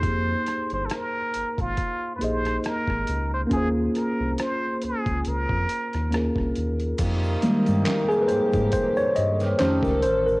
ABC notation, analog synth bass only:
X:1
M:4/4
L:1/16
Q:"Swing 16ths" 1/4=69
K:Fm
V:1 name="Analog synth bass" clef=bass
F,,2 z G,,, z2 A,,, A,,, z2 B,,,2 z A,,, D,,2 | E,,2 z C,, z2 D,, D,, D,, F,, z E,,2 C,, E,,2 | F,,2 z G,, z2 A,, A,, z2 G,,2 F,, D,, =A,,,2 |]